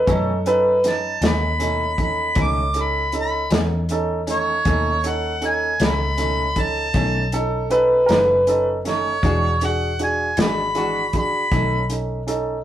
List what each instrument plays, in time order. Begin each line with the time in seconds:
0.07 fingered electric bass F#2, clean electric guitar B2 D#3 A3 C#4, grand piano C#4 D#4 A4, upright piano A4, kick, closed hi-hat
0.46 grand piano C#4 D#4 A4, upright piano B4, closed hi-hat
0.84 grand piano C#4 D#4 B4, snare, closed hi-hat
0.88 harmonica A5
1.21 fingered electric bass D#2, clean electric guitar D#3 A3 C#4, grand piano C#4 D#4 A4, snare, closed hi-hat
1.26 harmonica B5
1.59 clean electric guitar B2 D#3 A3 C#4, grand piano C#4 D#4 A4, closed hi-hat
1.98 grand piano C#4 D#4 A4, harmonica B5, kick, closed hi-hat
2.35 fingered electric bass C#2, clean electric guitar B2 D#3 A3 C#4, grand piano C#4 D#4 A4, kick, closed hi-hat
2.41 harmonica D6
2.74 grand piano C#4 D#4 A4, closed hi-hat
2.80 harmonica B5
3.12 grand piano C#4 D#4 A4, closed hi-hat
3.20 harmonica B5
3.50 fingered electric bass E2, clean electric guitar D#3 A3 C#4, grand piano C#4 D#4 A4, snare, closed hi-hat
3.89 grand piano C#4 D#4 A4, closed hi-hat
4.27 clean electric guitar D#3 A3 C#4, grand piano C#4 D#4 A4, closed hi-hat
4.32 harmonica C#5
4.65 fingered electric bass D#2, clean electric guitar B2 D#3 A3 C#4, grand piano C#4 D#4 A4, kick, closed hi-hat
5.04 grand piano C#4 D#4 A4, closed hi-hat
5.08 harmonica F#5
5.41 grand piano C#4 D#4 A4, closed hi-hat
5.47 harmonica G#5
5.80 fingered electric bass C#2, clean electric guitar D#3 A3 C#4, grand piano C#4 D#4 A4, snare, closed hi-hat
5.85 harmonica B5
6.17 clean electric guitar B2 D#3 A3, grand piano C#4 D#4 A4, closed hi-hat
6.21 clean electric guitar C#4
6.56 grand piano C#4 D#4 A4, kick, closed hi-hat
6.61 harmonica A5
6.94 fingered electric bass B1, clean electric guitar B2 D#3 A3 C#4, grand piano C#4 D#4 A4, kick, closed hi-hat
7.32 grand piano C#4 D#4 A4, upright piano A4, closed hi-hat
7.70 grand piano C#4 D#4 A4, upright piano B4, closed hi-hat
8.06 fingered electric bass F#1, clean electric guitar A3 C#4, grand piano C#4 D#4 A4, upright piano A#4, closed hi-hat
8.11 clean electric guitar D#3, upright piano B4, snare
8.47 grand piano C#4 D#4 A4, closed hi-hat
8.85 clean electric guitar D#3 A3 C#4, grand piano C#4 D#4 A4, harmonica C#5, snare, closed hi-hat
9.23 fingered electric bass E1, clean electric guitar E3 G#3 D4 F#4, grand piano D4 F#4 G#4, kick, closed hi-hat
9.61 grand piano D4 F#4 G#4, harmonica F#5, closed hi-hat
9.99 grand piano D4 F#4 G#4, harmonica G#5, closed hi-hat
10.37 fingered electric bass G#1, clean electric guitar G#3 D4 F#4, grand piano D4 F#4 G#4, harmonica B5, snare, closed hi-hat
10.75 clean electric guitar E3 G#3 D4 F#4, grand piano D4 F#4 G#4, closed hi-hat
11.13 grand piano D4 F#4 G#4, kick, closed hi-hat
11.18 harmonica B5
11.51 fingered electric bass B1, clean electric guitar B2 D#3 A3 C#4, grand piano C#4 D#4 A4, kick, closed hi-hat
11.89 grand piano C#4 D#4 A4, closed hi-hat
12.27 grand piano C#4 D#4 A4, closed hi-hat